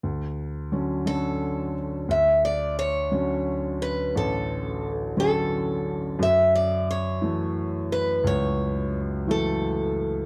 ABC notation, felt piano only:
X:1
M:6/8
L:1/8
Q:3/8=58
K:D
V:1 name="Felt piano" clef=bass
D,,2 [D,F,C] [D,F,C]2 z | D,,3 [D,F,C]3 | A,,,3 [D,F,C]3 | F,,3 [E,F,A,]3 |
C,,3 [E,F,A,]3 |]